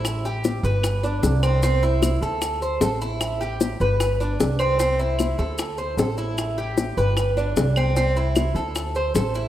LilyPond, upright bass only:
\new Staff \with { instrumentName = "Upright bass" } { \clef bass \time 4/4 \key c \major \tempo 4 = 152 a,,4. g,,4. c,4~ | c,4. d,4. a,,4~ | a,,4. g,,4. c,4~ | c,4. d,4. a,,4~ |
a,,4. g,,4. c,4~ | c,4. d,4. a,,4 | }